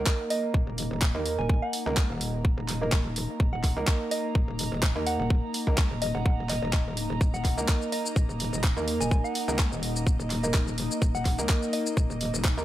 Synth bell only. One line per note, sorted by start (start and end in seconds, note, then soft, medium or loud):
0.30 0.47 D#5 medium
1.39 1.46 G#5 medium
1.62 2.29 F#5 medium
3.53 3.68 F#5 medium
4.11 4.27 D#5 medium
5.07 5.15 F#5 medium
5.19 5.26 F#5 medium
6.02 6.12 D#5 medium
6.15 6.22 F#5 medium
6.26 6.34 F#5 medium
6.50 6.58 D#5 medium
6.62 6.69 D#5 medium
7.34 7.49 F#5 medium
7.92 8.08 D#5 medium
9.00 9.07 G#5 medium
9.11 9.20 G#5 medium
9.24 9.91 F#5 medium
11.15 11.29 F#5 medium
11.73 11.89 D#5 medium